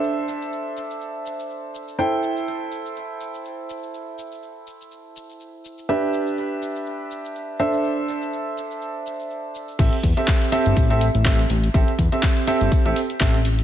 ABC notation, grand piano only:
X:1
M:4/4
L:1/16
Q:"Swing 16ths" 1/4=123
K:Am
V:1 name="Grand piano"
[DAce]16 | [EAcg]16- | [EAcg]16 | [DGBe]12- [DGBe]2 [DAce]2- |
[DAce]16 | [CGAe] z2 [CGAe]3 [CGAe]3 [CGAe] z2 [CGAe] z3 | [CGAe] z2 [CGAe]3 [CGAe]3 [CGAe] z2 [CGAe] z3 |]